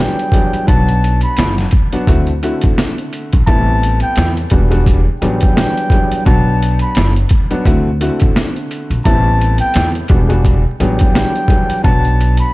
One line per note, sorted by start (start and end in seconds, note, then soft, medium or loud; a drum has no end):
0.00 0.30 E2 medium
0.00 0.31 F#3 medium
0.00 0.30 G3 medium
0.00 0.31 B3 medium
0.00 0.31 D4 medium
0.00 0.64 G5 medium
0.00 snare medium
0.00 closed hi-hat loud
0.19 closed hi-hat soft
0.32 0.65 E2 medium
0.32 0.65 F#3 medium
0.32 0.66 G3 medium
0.32 0.66 B3 medium
0.32 0.66 D4 medium
0.32 kick loud
0.32 closed hi-hat medium
0.53 closed hi-hat medium
0.67 1.22 B1 loud
0.67 1.65 F#3 loud
0.67 1.65 B3 medium
0.67 1.65 D4 medium
0.67 1.66 F#4 loud
0.67 1.19 A5 loud
0.67 kick loud
0.67 closed hi-hat medium
0.89 closed hi-hat soft
1.04 closed hi-hat medium
1.21 1.54 B5 medium
1.21 closed hi-hat medium
1.37 1.65 F#1 medium
1.37 snare loud
1.37 closed hi-hat medium
1.58 snare soft
1.58 closed hi-hat soft
1.71 kick loud
1.71 closed hi-hat medium
1.92 2.08 F#3 medium
1.92 2.08 B3 medium
1.92 2.08 D4 medium
1.92 2.07 F#4 loud
1.92 closed hi-hat medium
2.07 2.50 D2 loud
2.07 2.29 D3 medium
2.07 2.30 A3 medium
2.07 2.30 C4 medium
2.07 2.30 E4 medium
2.07 2.30 F#4 loud
2.07 kick medium
2.07 closed hi-hat medium
2.27 closed hi-hat soft
2.43 3.40 D3 medium
2.43 3.40 A3 medium
2.43 3.40 C4 medium
2.43 3.40 E4 medium
2.43 3.40 F#4 loud
2.43 closed hi-hat medium
2.61 2.75 A1 medium
2.61 kick medium
2.61 closed hi-hat medium
2.78 snare loud
2.78 snare medium
2.78 closed hi-hat loud
2.98 closed hi-hat soft
3.13 closed hi-hat medium
3.33 3.44 A#1 medium
3.33 kick medium
3.33 closed hi-hat soft
3.46 4.01 A1 loud
3.46 4.44 A2 medium
3.46 4.44 G3 medium
3.46 4.45 B3 loud
3.46 4.45 C4 medium
3.46 4.45 E4 loud
3.46 3.98 A5 loud
3.46 kick loud
3.46 closed hi-hat medium
3.83 closed hi-hat medium
4.00 4.33 G5 medium
4.00 closed hi-hat medium
4.16 4.44 E2 loud
4.16 snare loud
4.16 closed hi-hat medium
4.37 closed hi-hat soft
4.50 5.05 E1 loud
4.50 4.69 E2 medium
4.50 4.69 G3 medium
4.50 4.69 B3 medium
4.50 4.69 D4 medium
4.50 4.70 F#4 medium
4.50 kick loud
4.50 closed hi-hat medium
4.70 5.03 E2 medium
4.70 5.03 G3 medium
4.70 5.03 B3 medium
4.70 5.03 D4 medium
4.70 5.03 F#4 loud
4.70 closed hi-hat medium
4.86 kick loud
4.86 closed hi-hat medium
5.20 5.64 A1 loud
5.20 5.54 E2 loud
5.20 5.55 F#3 loud
5.20 5.54 G3 medium
5.20 5.54 B3 medium
5.20 5.55 D4 medium
5.20 6.22 G5 medium
5.20 closed hi-hat medium
5.41 kick medium
5.41 closed hi-hat medium
5.55 5.88 E2 medium
5.55 5.89 F#3 medium
5.55 5.89 G3 medium
5.55 5.89 B3 medium
5.55 5.89 D4 medium
5.55 snare loud
5.55 snare medium
5.55 closed hi-hat loud
5.77 closed hi-hat soft
5.90 6.23 E2 medium
5.90 6.24 F#3 medium
5.90 6.24 G3 medium
5.90 6.24 B3 medium
5.90 6.24 D4 medium
5.90 kick loud
5.90 closed hi-hat medium
6.12 closed hi-hat medium
6.25 6.80 B1 loud
6.25 7.23 F#3 loud
6.25 7.23 B3 medium
6.25 7.23 D4 medium
6.25 7.24 F#4 loud
6.25 6.78 A5 loud
6.25 kick loud
6.25 closed hi-hat medium
6.62 closed hi-hat medium
6.79 7.13 B5 medium
6.79 closed hi-hat medium
6.95 7.23 F#1 medium
6.95 snare loud
6.95 closed hi-hat medium
7.16 closed hi-hat soft
7.29 kick loud
7.29 closed hi-hat medium
7.51 7.66 F#3 medium
7.51 7.66 B3 medium
7.51 7.66 D4 medium
7.51 7.65 F#4 loud
7.51 closed hi-hat medium
7.65 8.08 D2 loud
7.65 7.88 D3 medium
7.65 7.88 A3 medium
7.65 7.88 C4 medium
7.65 7.88 E4 medium
7.65 7.88 F#4 loud
7.65 kick loud
7.65 closed hi-hat medium
8.01 8.98 D3 loud
8.01 8.98 A3 medium
8.01 8.98 C4 medium
8.01 8.99 E4 medium
8.01 8.99 F#4 loud
8.01 closed hi-hat medium
8.20 8.33 A1 medium
8.20 kick medium
8.20 closed hi-hat medium
8.36 snare loud
8.36 snare medium
8.36 closed hi-hat loud
8.56 closed hi-hat soft
8.71 closed hi-hat medium
8.90 9.02 A#1 medium
8.90 closed hi-hat soft
9.05 9.59 A1 loud
9.05 10.03 A2 loud
9.05 10.03 G3 medium
9.05 10.03 B3 loud
9.05 10.03 C4 medium
9.05 10.03 E4 loud
9.05 9.56 A5 loud
9.05 kick loud
9.05 closed hi-hat medium
9.41 closed hi-hat medium
9.58 9.92 G5 loud
9.58 closed hi-hat medium
9.74 10.02 E2 loud
9.74 snare loud
9.74 closed hi-hat medium
9.95 closed hi-hat soft
10.08 10.64 E1 loud
10.08 10.27 E2 medium
10.08 10.27 G3 medium
10.08 10.28 B3 medium
10.08 10.28 D4 medium
10.08 10.28 F#4 loud
10.08 kick loud
10.08 closed hi-hat medium
10.29 10.61 E2 loud
10.29 10.61 G3 medium
10.29 10.61 B3 medium
10.29 10.61 D4 medium
10.29 10.61 F#4 loud
10.29 closed hi-hat medium
10.45 kick loud
10.45 closed hi-hat medium
10.80 11.22 A1 loud
10.80 11.12 E2 loud
10.80 11.13 F#3 loud
10.80 11.12 G3 medium
10.80 11.13 B3 medium
10.80 11.13 D4 medium
10.80 11.81 G5 medium
10.80 closed hi-hat medium
10.99 kick medium
10.99 closed hi-hat medium
11.14 11.47 E2 medium
11.14 11.47 F#3 medium
11.14 11.47 G3 medium
11.14 11.47 B3 medium
11.14 11.47 D4 medium
11.14 snare loud
11.14 snare medium
11.14 closed hi-hat loud
11.36 closed hi-hat soft
11.48 11.82 E2 medium
11.48 11.82 F#3 medium
11.48 11.82 G3 medium
11.48 11.82 B3 medium
11.48 11.82 D4 medium
11.48 kick loud
11.48 closed hi-hat medium
11.70 closed hi-hat medium
11.83 12.38 B1 loud
11.83 12.54 F#3 loud
11.83 12.54 B3 medium
11.83 12.54 D4 medium
11.83 12.54 F#4 loud
11.83 12.36 A5 loud
11.83 kick loud
11.83 closed hi-hat medium
12.05 closed hi-hat soft
12.21 closed hi-hat medium
12.37 12.54 B5 medium
12.37 closed hi-hat medium